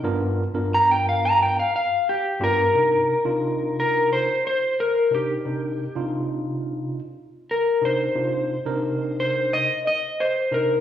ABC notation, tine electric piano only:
X:1
M:4/4
L:1/16
Q:1/4=89
K:Cm
V:1 name="Tine electric piano"
[G,,=B,DF^A]2 z [G,,B,DFA]6 z4 z [G,,B,DFG]2 | [C,DEB]2 z [C,DEF]6 z4 z [C,DEB]2 | [C,DEB]2 z [C,DEF]6 z4 z [C,DEB]2 | [C,DEF]2 z [C,DEB]6 z4 z [C,DEB]2 |]